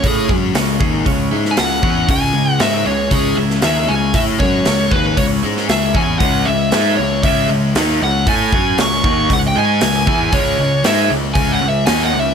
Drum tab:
HH |o---o---o---o---|o---o---o---o---|o---o---o---o---|o---o---o---o---|
SD |----o------oo---|----o------oo---|----o------oo---|----o-------o---|
BD |o-o---o-o-----o-|o-------o-------|o-o---o-o-----o-|o-------o-------|

HH |o---o---o---o---|o---o---o---o---|
SD |----o-------o---|----o-------o---|
BD |o-o---o-o-----o-|o-------o-------|